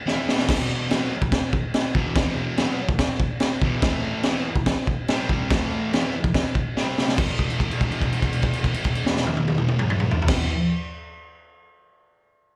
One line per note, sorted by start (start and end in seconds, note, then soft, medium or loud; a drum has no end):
0.06 0.48 E3 loud
0.06 0.48 B3 loud
0.06 0.49 E4 loud
0.06 snare medium
0.29 snare loud
0.39 snare loud
0.49 0.90 E2 loud
0.49 0.88 B2 loud
0.49 0.90 E3 loud
0.49 kick loud
0.49 snare loud
0.49 crash loud
0.49 crash medium
0.90 1.10 B2 medium
0.90 1.11 F#3 medium
0.90 1.11 B3 loud
0.90 snare loud
0.90 crash medium
1.22 kick medium
1.32 kick loud
1.32 snare loud
1.32 crash medium
1.53 kick medium
1.74 snare loud
1.74 crash medium
1.95 2.15 E2 loud
1.95 2.15 B2 loud
1.95 2.16 E3 loud
1.95 kick medium
2.16 2.58 E2 loud
2.16 2.57 B2 loud
2.16 2.58 E3 loud
2.16 kick loud
2.16 snare loud
2.16 crash medium
2.58 2.78 B2 medium
2.58 2.79 F#3 loud
2.58 2.79 B3 loud
2.58 snare loud
2.58 crash medium
2.89 kick medium
2.99 kick loud
2.99 snare loud
2.99 crash medium
3.20 kick medium
3.40 snare loud
3.40 crash medium
3.62 3.83 E2 loud
3.62 3.83 B2 loud
3.62 3.83 E3 loud
3.62 kick medium
3.82 4.25 A2 loud
3.82 4.24 E3 loud
3.82 4.26 A3 loud
3.82 kick loud
3.82 snare loud
3.82 crash medium
4.23 4.46 E3 medium
4.23 4.46 B3 loud
4.23 4.47 E4 loud
4.23 snare loud
4.23 crash medium
4.56 kick medium
4.66 kick loud
4.66 snare loud
4.66 crash medium
4.87 kick medium
5.08 5.50 C3 loud
5.08 5.51 G3 loud
5.08 5.51 C4 loud
5.08 snare loud
5.08 crash medium
5.29 kick medium
5.51 5.93 A2 loud
5.51 5.92 E3 loud
5.51 5.93 A3 loud
5.51 kick loud
5.51 snare loud
5.51 crash medium
5.93 6.14 E3 medium
5.93 6.14 B3 loud
5.93 6.15 E4 loud
5.93 snare loud
5.93 crash medium
6.24 kick medium
6.34 kick loud
6.34 snare loud
6.34 crash medium
6.55 kick medium
6.77 7.18 C3 medium
6.77 7.19 G3 loud
6.77 7.19 C4 loud
6.77 snare medium
6.98 snare loud
7.08 snare loud
7.18 10.28 E2 loud
7.18 10.31 B2 loud
7.18 kick loud
7.18 crash loud
7.23 10.33 E3 loud
7.39 kick medium
7.39 crash soft
7.50 crash medium
7.60 kick medium
7.60 crash medium
7.71 crash soft
7.81 kick medium
7.81 crash medium
7.92 crash medium
8.02 kick medium
8.02 crash soft
8.12 crash medium
8.22 kick medium
8.22 crash medium
8.33 crash medium
8.42 kick medium
8.42 crash medium
8.53 crash medium
8.64 kick medium
8.64 crash medium
8.74 crash medium
8.84 kick medium
8.84 crash medium
8.95 crash medium
9.06 snare loud
9.16 snare loud
9.27 high tom loud
9.37 high tom loud
9.48 high tom loud
9.58 mid tom loud
9.68 mid tom loud
9.79 mid tom loud
9.90 mid tom loud
10.00 mid tom loud
10.11 floor tom loud
10.22 floor tom loud
10.28 10.48 E2 medium
10.28 10.49 B2 loud
10.28 kick loud
10.28 snare medium
10.28 crash loud
10.33 10.50 E3 loud